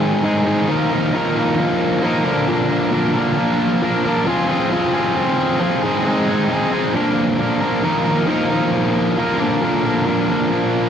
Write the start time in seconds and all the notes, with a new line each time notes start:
Already playing: G#2 D#3 G#3 C4 D#4 G#4
0.24 G#2 D#3 G#3 C4 D#4 G#4
0.46 G#2 D#3 G#3 C4 D#4 G#4
0.68 D#3 F3 A#3 D#4 A#4
0.91 A#3 D#4 A#4
1.14 D#3 F3 A#3 D#4 A#4
1.36 A#3 D#4 A#4
2.02 F3 A#3 D#4 A#4
2.25 A#2 D3 F3 A#3 D4 A#4
2.47 A#2 D3 F3 A#3 D4 A#4
2.69 F3 A#3 D4 A#4
2.91 A#2 D3 F3 A#3 D4 A#4
3.14 F3 A#3 D4 A#4
3.82 F3 A#3 D4 A#4
4.05 F3 A#3 D4 A#4
4.26 F3 C4 F4 G#4
4.49 C4 F4 G#4
4.70 F3 C4 F4 G#4
4.93 C4 F4 G#4
5.60 F3 C4 F4 G#4
5.82 G#3 C4 D#4 G#4
6.04 G#3 C4 D#4 G#4
6.27 C4 D#4 G#4
6.50 G#3 C4 D#4 G#4
6.72 C4 D#4 G#4
6.94 A#2 D3 F3 A#3 D4 A#4
7.38 F3 A#3 D4 A#4
7.61 F3 A#3 D4 A#4
7.83 D#3 F3 A#3 D#4 A#4
8.05 A#3 D#4 A#4
8.28 D#3 F3 A#3 D#4 A#4
8.50 A#3 D#4 A#4
9.17 F3 A#3 D#4 A#4
9.39 A#2 D3 F3 A#3 D4 A#4
9.61 A#2 D3 F3 A#3 D4 A#4
9.83 F3 A#3 D4 A#4
10.05 A#2 D3 F3 A#3 D4 A#4
10.28 F3 A#3 D4 A#4